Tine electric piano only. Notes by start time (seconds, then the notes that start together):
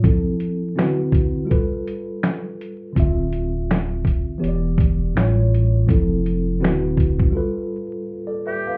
0.02 F3 C4 E4 A4
0.76 D3 C4 E4 F#4 B4
1.45 G3 F4
1.49 A4 B4
2.93 D3 C4
2.97 F4 E5
4.38 E3 B3 G4 C#5
4.48 D5
5.14 A2 G3 F4 C#5
5.86 E3 C4 E4 A4
5.93 F3
6.59 D3 C4 E4 F#4 B4
7.31 G3 F4
7.35 A4 B4
8.27 A4 D5
8.47 B4 E5
8.67 B4 F5